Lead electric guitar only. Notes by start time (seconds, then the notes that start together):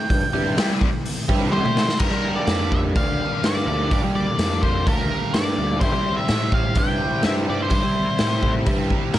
Already playing: G5
1.52 C5
1.99 A#4
2.36 D5
2.72 E5
2.97 F5
3.45 D5
3.93 D5
4.15 D5
4.63 C5
4.87 A#4
5.34 D5
5.80 C5
6.17 E5
6.54 F5
6.79 G5
7.25 E5
7.50 D5
7.62 C5
9.14 C5